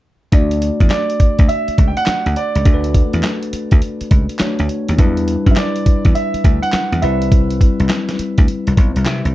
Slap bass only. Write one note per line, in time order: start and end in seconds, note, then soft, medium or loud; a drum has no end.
0.32 0.69 D2 medium
0.80 0.88 E2 medium
1.20 muted slap bass stroke soft
1.39 1.47 D2 medium
1.68 muted slap bass stroke soft
1.78 1.93 C#2 medium
2.07 muted slap bass stroke soft
2.26 2.34 D2 medium
2.55 2.63 C#2 medium
2.65 3.02 D2 loud
3.13 3.21 E2 medium
3.53 muted slap bass stroke soft
3.72 3.80 D2 medium
4.01 muted slap bass stroke soft
4.11 4.25 C#2 medium
4.41 muted slap bass stroke soft
4.59 4.67 D2 medium
4.89 4.97 D#2 medium
4.98 5.35 E2 loud
5.47 5.54 F#2 medium
5.86 muted slap bass stroke soft
6.05 6.13 E2 medium
6.34 muted slap bass stroke soft
6.44 6.59 D2 medium
6.73 muted slap bass stroke soft
6.92 7.00 E2 medium
7.03 7.62 C2 medium
7.80 7.88 C2 medium
8.19 muted slap bass stroke soft
8.38 8.46 D2 medium
8.67 8.75 C2 medium
8.77 8.92 B1 medium
8.96 9.04 C2 medium
9.06 9.21 C3 loud
9.25 9.33 C2 medium